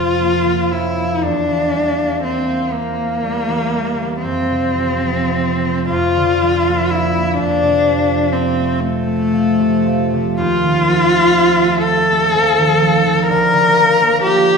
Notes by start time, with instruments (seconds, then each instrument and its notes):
Already playing: harp F2 F3, cello F4
0.19 harp A#3
0.45 harp F3
0.71 harp C#4, cello E4
0.97 harp A#3
1.23 harp E2, cello D4
1.47 harp E3
1.73 harp G3
1.99 harp A#3
2.24 cello C4, harp C4
2.49 harp A#3
2.73 cello A#3, harp C4
2.98 harp A#3
3.23 harp G3
3.47 harp E3
3.73 harp G3
3.97 harp E3
4.23 harp F2, cello C4
4.50 harp C3
4.79 harp F3
5.07 harp A3
5.36 harp C4
5.64 harp A3
5.90 harp F2, cello F4
6.16 harp D3
6.41 harp F3
6.67 harp A#3
6.90 harp D4, cello E4
7.16 harp A#3
7.38 harp F2, cello D4
7.63 harp C3
7.87 harp F3
8.11 harp A3
8.33 cello C4, harp C4
8.59 harp A3
8.80 cello A3, harp C4
9.07 harp A3
9.33 harp F3
9.59 harp C3
9.86 harp F3
10.13 harp C3
10.37 harp D#2, cello F4
10.63 harp D#3
10.89 harp F3
11.13 harp A3
11.37 harp C4
11.62 harp A3
11.85 harp C4, cello A4
12.10 harp A3
12.34 harp F3
12.58 harp D#3
12.82 harp F3
13.06 harp D#3
13.27 harp D2, cello A#4
13.53 harp D3
13.77 harp F3
14.01 harp A#3
14.24 harp F4, cello G4